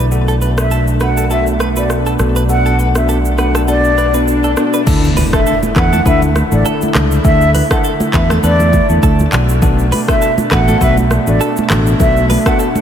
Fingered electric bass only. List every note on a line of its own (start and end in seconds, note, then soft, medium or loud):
0.00 2.16 B1 medium
2.20 4.53 B1 medium
4.87 5.22 D2 loud
5.76 5.99 E2 medium
6.06 6.41 D2 loud
6.52 6.62 A1 medium
6.95 7.18 C#2 medium
7.25 7.60 D2 loud
8.14 8.37 E2 medium
8.43 8.79 E2 loud
8.89 9.00 E2 loud
9.03 9.26 D2 medium
9.33 9.91 B1 loud
10.51 10.74 A1 medium
10.81 11.16 B1 loud
11.27 11.37 A1 medium
11.70 11.93 A1 medium
12.00 12.35 B1 loud